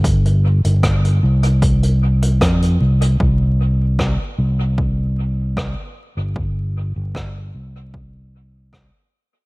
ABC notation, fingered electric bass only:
X:1
M:4/4
L:1/16
Q:1/4=76
K:Gm
V:1 name="Fingered electric bass" clef=bass
G,,,3 G,,,3 C,,6 F,,2 C,,2 | C,,4- C,, z C,,6- C,, z2 G,,,- | G,,,3 G,,,3 C,,6- C,, z3 |]